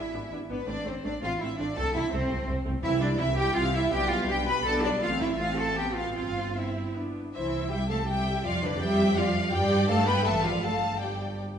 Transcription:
Already playing: cello section E4, violin section E5
0.14 double bass section G#1, viola section B3 D4
0.31 double bass section G#1, viola section B3 D4
0.50 double bass section G#1, viola section B3 D4, cello section B3, violin section B4
0.67 double bass section A1, viola section A3 C4, cello section D4, violin section D5
0.85 double bass section A1, viola section A3 C4, cello section C4, violin section C5
1.04 double bass section A1, viola section A3 C4, cello section D4, violin section D5
1.22 double bass section A1, viola section A3 C4, cello section F4, violin section F5
1.40 double bass section A1, viola section A3 C4, cello section E4, violin section E5
1.59 double bass section A1, viola section A3 C4, cello section D4, violin section D5
1.76 double bass section C2, viola section A3 C4, cello section A4, violin section A5
1.95 double bass section C2, viola section A3 C4, cello section E4, violin section E5
2.12 double bass section C2, viola section A3 C4, cello section C4, violin section C5
2.29 double bass section C2, viola section A3 C4
2.47 double bass section C2, viola section A3 C4
2.65 double bass section C2, viola section A3 C4
2.83 double bass section C2, viola section E3 C4, cello section E4, violin section E5
3.00 viola section G3 E4, cello section D4, violin section D5
3.19 double bass section C2, viola section E3 C4, cello section E4, violin section E5
3.36 viola section G3 E4, cello section G4, violin section G5
3.55 double bass section C2, viola section E3 C4, cello section F4, violin section F5
3.74 viola section G3 E4, cello section E4, violin section E5
3.92 double bass section B1, viola section B3 D4, cello section G4, violin section G5
4.10 viola section G3 B3, cello section F4, violin section F5
4.29 double bass section B1, viola section B3 D4, cello section G4, violin section G5
4.47 viola section G3 B3, cello section B4, violin section B5
4.66 double bass section B1, viola section B3 D4, cello section A4, violin section A5
4.84 viola section G3 B3, cello section D4, violin section D5
5.02 double bass section A1, viola section A3 C4, cello section F4, violin section F5
5.21 cello section E4, violin section E5
5.39 viola section A3 C4, cello section F4, violin section F5
5.58 cello section A4, violin section A5
5.78 viola section B3, cello section G4, violin section G5
5.97 cello section F4, violin section F5
6.16 double bass section G1, viola section C4, cello section F4, violin section F5
6.56 viola section C4, cello section E4, violin section E5
6.95 viola section B3 D4
7.34 double bass section C2, cello section E3, viola section E4, violin section C5 E5
7.72 cello section G3, viola section G4, violin section E5 G5
7.90 cello section A3, viola section A4, violin section F5 A5
8.09 cello section G3, viola section G4, violin section E5 G5
8.45 double bass section F2, cello section F3, viola section F4, violin section D5 F5
8.64 cello section D3, viola section D4, violin section B4 D5
8.81 cello section G3, viola section G4, violin section E5 G5
9.17 cello section F3, viola section F4, violin section D5 F5
9.53 double bass section G2, cello section G3, viola section G4, violin section D5 G5
9.89 cello section A3, viola section A4, violin section F5 A5
10.07 cello section B3, viola section B4, violin section G5 B5
10.26 double bass section A1, cello section A3, viola section A4, violin section E5 A5
10.44 cello section F3, viola section F4, violin section D5 F5
10.63 double bass section G1, cello section A3, viola section A4, violin section F5 A5
11.01 cello section G3, viola section G4, violin section D5 G5

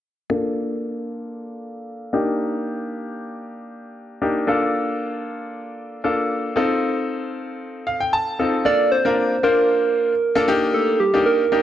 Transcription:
0.30 grand piano A#3 D4 F4 A4
2.13 grand piano A#3 D4 D#4 G4
4.22 grand piano A#3 D4 D#4 G4
4.47 grand piano A#3 D4 F4 A4
6.04 grand piano A#3 D4 F4 A4
6.56 grand piano C4 D#4 F4 A4
7.87 grand piano F5
8.00 grand piano G5
8.13 grand piano A5
8.39 grand piano C4 D#4 F4 A4
8.65 grand piano A#3 D4 F4 A4, soft synth lead D5
8.92 soft synth lead C5
9.05 grand piano A#3 D4 F4 A#4
9.43 grand piano A#3 D4 F4 C5, soft synth lead A#4
10.36 grand piano A#3 D4 F4 A4
10.48 grand piano A#3 D4 D#4 G4
10.74 soft synth lead A4
11.00 soft synth lead G4
11.14 grand piano A#3 D4 D#4 G4
11.26 soft synth lead A#4
11.52 grand piano A#3 D4 D#4 G4

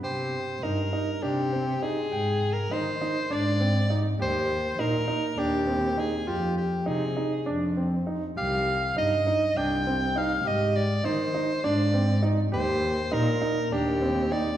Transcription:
0.03 cello C3, grand piano G4, soprano saxophone C5
0.63 cello G2, grand piano D#4, soprano saxophone A#4
0.93 grand piano D#4
1.23 cello C3, grand piano D4, soprano saxophone G4
1.53 grand piano C4
1.82 grand piano D#4, soprano saxophone G#4
2.12 cello G#2, grand piano G5
2.53 soprano saxophone A#4
2.71 cello D#3, grand piano D#4, soprano saxophone C5
3.01 grand piano D#4
3.30 cello G#2, grand piano D4, soprano saxophone D5
3.60 grand piano C4
3.90 grand piano D#4
4.19 cello D#2, grand piano G4, soprano saxophone C5
4.79 cello A#2, grand piano D#4, soprano saxophone A#4
5.08 grand piano D#4
5.38 cello D#2, grand piano D4, soprano saxophone G4
5.67 grand piano C4
5.98 grand piano D#4, soprano saxophone G#4
6.27 cello F2, grand piano F4, soprano saxophone G4
6.58 soprano saxophone G4
6.86 cello C3, grand piano D#4, soprano saxophone G#4
7.17 grand piano D#4
7.46 cello F2, grand piano D4
7.77 grand piano C4
8.07 grand piano D#4
8.37 cello C2, grand piano G4, soprano saxophone F5
8.97 cello G2, grand piano D#4, soprano saxophone D#5
9.27 grand piano D#4
9.56 cello C2, grand piano D4, soprano saxophone G5
9.87 grand piano C4
10.16 grand piano D#4, soprano saxophone F5
10.44 cello G#2, grand piano G4, soprano saxophone D#5
10.76 soprano saxophone D5
11.04 cello D#3, grand piano D#4, soprano saxophone C5
11.34 grand piano D#4
11.64 cello G#2, grand piano D4, soprano saxophone D5
11.94 grand piano C4
12.23 grand piano D#4
12.52 cello D#2, grand piano G4, soprano saxophone C5
13.12 cello A#2, grand piano D#4, soprano saxophone A#4
13.41 grand piano D#4
13.72 cello D#2, grand piano D4, soprano saxophone G4
14.02 grand piano C4
14.32 grand piano D#4, soprano saxophone D5

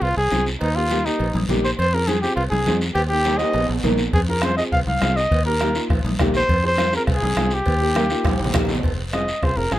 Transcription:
0.01 fingered electric bass C2, flugelhorn F4, cowbell, long guiro
0.17 fingered electric bass C2, flugelhorn G#4
0.31 fingered electric bass C2, upright piano C4 F4 G#4, cowbell, high conga, low timbale, short guiro
0.46 short guiro
0.61 fingered electric bass D#2, flugelhorn D#4, cowbell, long guiro
0.75 upright piano A#3 D#4 G4, flugelhorn F4
0.90 upright piano A#3 D#4 G4, cowbell, high conga, short guiro
1.05 upright piano A#3 D#4 G4, flugelhorn D#4, short guiro
1.19 fingered electric bass A#1, cowbell, long guiro
1.34 fingered electric bass A#1, high conga
1.49 fingered electric bass A#1, upright piano A#3 D#4 G4, cowbell, high conga, low conga, low timbale, short guiro
1.64 flugelhorn C5, short guiro
1.78 fingered electric bass F2, flugelhorn C5, cowbell, long guiro
1.94 upright piano C4 F4 G#4, flugelhorn A#4
2.07 upright piano C4 F4 G#4, flugelhorn G#4, cowbell, high conga, short guiro
2.21 upright piano C4 F4 G#4, flugelhorn G4, short guiro
2.36 fingered electric bass C2, flugelhorn F4, cowbell, long guiro
2.50 fingered electric bass C2, flugelhorn G#4, high conga
2.66 fingered electric bass F2, upright piano C4 F4 G#4, cowbell, high conga, low timbale, short guiro
2.81 short guiro
2.94 fingered electric bass D#2, flugelhorn G4, cowbell, long guiro
3.08 upright piano A#3 D#4 G4, flugelhorn G4
3.25 upright piano A#3 D#4 G4, cowbell, high conga, high timbale, short guiro
3.38 upright piano A#3 D#4 G4, flugelhorn D#5, high timbale, short guiro
3.54 fingered electric bass A#1, cowbell, low timbale, long guiro
3.69 fingered electric bass A#1, low timbale
3.83 fingered electric bass A#1, upright piano A#3 D#4 A#4, cowbell, high conga, low conga, low timbale, short guiro
3.98 low timbale, short guiro
4.13 fingered electric bass F2, flugelhorn G#4, bombo low, cowbell, long guiro
4.28 upright piano C4 F4 G#4, flugelhorn A#4
4.42 upright piano C4 F4 G#4, flugelhorn C5, bombo rim, cowbell, high conga, short guiro
4.57 upright piano C4 F4 G#4, flugelhorn D#5, short guiro
4.72 fingered electric bass C2, flugelhorn F5, bombo low, cowbell, long guiro
4.87 fingered electric bass C2, flugelhorn F5, high conga
5.02 fingered electric bass C2, upright piano C4 F4 G#4, bombo rim, cowbell, high conga, low timbale, short guiro
5.16 flugelhorn D#5, short guiro
5.31 fingered electric bass D#2, bombo low, cowbell, long guiro
5.45 upright piano A#3 D#4 G4, flugelhorn A#4
5.60 upright piano A#3 D#4 G4, bombo rim, cowbell, high conga, short guiro
5.74 upright piano A#3 D#4 F4, short guiro
5.90 fingered electric bass A#1, bombo low, bombo rim, cowbell, long guiro
6.04 fingered electric bass A#1, high conga
6.19 fingered electric bass A#1, upright piano A#3 D#4 G4, bombo low, bombo rim, cowbell, high conga, low conga, low timbale, short guiro
6.34 flugelhorn C5, low conga, short guiro
6.49 fingered electric bass F2, bombo low, cowbell, long guiro
6.63 upright piano C4 F4 G#4, flugelhorn C5
6.77 upright piano C4 F4 A#4, bombo rim, cowbell, high conga, short guiro
6.92 upright piano C4 F4 G#4, flugelhorn A#4, short guiro
7.07 fingered electric bass C2, flugelhorn G#4, bombo low, bombo rim, cowbell, long guiro
7.22 fingered electric bass C2, high conga
7.36 fingered electric bass C2, upright piano C4 F4 G#4, bombo rim, cowbell, high conga, low timbale, short guiro
7.51 flugelhorn G4, short guiro
7.66 fingered electric bass D#2, bombo low, cowbell, long guiro
7.81 upright piano A#3 D#4 G4
7.95 upright piano A#3 D#4 A#4, bombo rim, cowbell, high conga, short guiro
8.10 upright piano A#3 D#4 F4, short guiro
8.25 fingered electric bass A#1, bombo low, bombo rim, cowbell, high conga, high timbale, long guiro
8.39 fingered electric bass A#1, high timbale
8.45 low conga
8.54 fingered electric bass A#1, upright piano A#3 D#4 G4, bombo low, bombo rim, cowbell, low conga, short guiro
8.65 low conga, low timbale, short guiro
8.75 low conga
8.83 fingered electric bass F1, bombo low, cowbell, long guiro
9.13 upright piano C4 F4 G#4, flugelhorn D#5, bombo rim, cowbell, high conga, short guiro
9.28 short guiro
9.42 fingered electric bass C2, upright piano C4 F4 G#4, flugelhorn C5, bombo low, bombo rim, cowbell, long guiro
9.57 fingered electric bass F1, upright piano C4 F4 G#4, flugelhorn A#4
9.71 fingered electric bass G#1, upright piano C4 F4 G#4, flugelhorn G#4, bombo rim, cowbell, high conga, low timbale, short guiro

